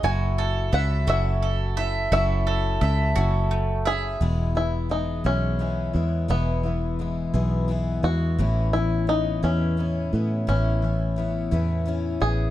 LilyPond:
<<
  \new Staff \with { instrumentName = "Mandolin" } { \time 6/8 \key e \major \tempo 4. = 57 fis'8 a'8 e''8 fis'8 a'8 e''8 | fis'8 a'8 e''8 fis'8 a8 e''8 | r2. | r2. |
r2. | r2. | }
  \new Staff \with { instrumentName = "Five-string banjo" } { \time 6/8 \key e \major gis''4 fis''8 e''4. | e''2 r8 gis'8~ | gis'8 e'8 dis'8 cis'4. | b2~ b8 fis'8~ |
fis'8 e'8 dis'8 cis'4. | cis'2~ cis'8 gis'8 | }
  \new Staff \with { instrumentName = "Steel-string acoustic guitar" } { \time 6/8 \key e \major << { r2. | r2. | r4 gis8 gis'8 b8 gis8 | r4 gis8 gis'8 b8 gis8 |
<e b cis'>4 b8 e'8 cis'8 b8 | r4 b8 e'8 cis'8 b8 | } \\ { r2. | r2. | e,8 e2~ e8 | e,8 e2~ e8 |
a,8 e2~ e8 | a,8 e2~ e8 | } >> }
  \new Staff \with { instrumentName = "Steel-string acoustic guitar" } { \time 6/8 \key e \major <fis cis' e' a'>4 <fis cis' e' a'>8 <fis cis' e' a'>4 <cis' e' a'>8 | <fis cis' e' a'>4 <fis cis' e' a'>8 <fis cis' e' a'>4 <cis' e'>8 | <e, b, e gis b e'>8 <e gis b e'>8 <e gis b>8 <e, b, e gis b e'>8 <e gis b e'>8 <e gis b e'>8 | <e, b, e gis b e'>8 <e gis b e'>8 <e gis b e'>8 <e, b, e gis b e'>8 <e gis b e'>8 <e gis b e'>8 |
<a, e b cis' e'>8 <b cis' e'>8 <e b cis'>8 <a, e b cis' e'>8 <e b cis' e'>8 <b cis' e'>8 | <a, e b cis' e'>8 <b cis' e'>8 <e b cis' e'>8 <a, e b cis' e'>8 <e b cis' e'>8 <b cis' e'>8 | }
  \new Staff \with { instrumentName = "Fingered electric bass" } { \clef bass \time 6/8 \key e \major fis,,4 cis,8 fis,,4. | fis,,4 cis,8 fis,,4. | e,,4. b,,4 e,8 | e,,4. b,,4 e,8 |
a,,4. e,4 a,8 | a,,4. e,4 a,,8 | }
>>